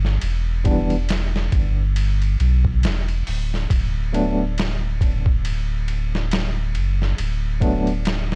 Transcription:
Already playing: sub bass G1
0.05 snare
0.21 sub bass E1, ride
0.64 tine electric piano E3 G3 B3 D4, kick, ride
0.90 ride
1.09 snare, ride
1.36 snare
1.52 sub bass G1, kick, ride
1.96 ride
2.22 ride
2.40 sub bass B1, ride
2.65 kick
2.83 sub bass E1, snare, ride
3.08 ride
3.27 sub bass D1, open hi-hat
3.54 snare
3.70 sub bass D1, kick, ride
4.12 tine electric piano F#3 A3 B3 D4, ride
4.58 snare, ride
5.01 kick, ride
5.26 kick
5.45 ride
5.88 ride
6.15 snare
6.31 snare, ride
6.75 sub bass F#1, ride
7.02 snare
7.18 sub bass D1, ride
7.60 tine electric piano F#3 A3 B3 D4, kick, ride
7.87 ride
8.05 snare, ride
8.32 snare

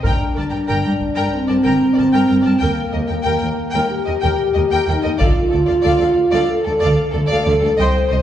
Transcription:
0.03 double bass section G1, cello section G2, french horn section D4, viola section A#4, violin section G5 A#5, taiko
0.35 double bass section G1, cello section G2, viola section A#4, violin section D5 A5
0.51 cello section G2, viola section A#4, violin section G5 A#5
0.68 double bass section G1, cello section G2, viola section A#4, violin section G5 A#5
0.84 cello section G2, viola section A#4, violin section G5 A#5
1.01 taiko
1.15 cello section G2, viola section A#4, violin section G5 A#5
1.32 french horn section C4
1.47 cello section G2, viola section A#4, violin section D5 A5
1.63 double bass section G1, cello section G2, viola section A#4, violin section G5 A#5
1.94 cello section G2, viola section A#4, violin section D5
1.99 double bass section G1, violin section A5
2.12 cello section G2, viola section A#4, violin section G5 A#5
2.26 cello section G2, viola section A#4, violin section G5 A#5
2.30 double bass section G1
2.42 cello section G2, viola section A#4, violin section D5 A5
2.58 french horn section A#3, viola section A#4, violin section G5
2.62 cello section D#2, double bass section D#2
2.92 double bass section D#2, cello section D#2, viola section A#4, violin section D#5
3.07 cello section D#2, viola section A#4, violin section G5
3.23 double bass section D#2, viola section A#4, violin section G5
3.27 cello section D#2
3.38 violin section G5
3.42 cello section D#2, viola section A#4
3.71 cello section D#2, viola section A#4, violin section G5
3.90 french horn section G4
4.05 cello section D#2, viola section A#4, violin section D#5
4.20 cello section D#2, double bass section D#2, violin section G5
4.24 viola section A#4
4.54 cello section D#2, double bass section D#2, viola section A#4, violin section D#5
4.70 cello section D#2, viola section A#4, violin section G5
4.86 cello section D#2, double bass section D#2, french horn section D#4, viola section A#4, violin section G5
5.03 cello section D#2, viola section A#4, violin section D#5
5.17 cello section D2, double bass section D2, viola section A4, violin section D5 F5, taiko
5.22 french horn section F4
5.50 cello section D2, double bass section D2, violin section A4 D5, viola section A4
5.66 cello section D2, viola section A4, violin section D5 F5
5.82 cello section D2, double bass section D2, viola section A4, violin section D5 F5
5.98 cello section D2, viola section A4, violin section D5 F5
6.31 cello section D2, viola section A4, violin section D5 F5
6.49 french horn section A4
6.64 cello section D2, violin section A4 D5, viola section A4
6.80 cello section D2, double bass section D2, viola section A4, violin section D5 F5
7.11 cello section D2, violin section A4 D5, viola section A4
7.15 double bass section D2, french horn section A4
7.26 cello section D2, viola section A4, violin section D5
7.31 violin section F5
7.44 cello section D2, viola section A4, violin section D5
7.48 double bass section D2, violin section F5
7.60 cello section D2, violin section A4, viola section A4
7.65 violin section D5
7.77 cello section C2, double bass section C2, viola section C5, violin section D#5 G5
7.82 french horn section C5
8.08 cello section C2, violin section C5 D#5, viola section C5
8.13 double bass section C2

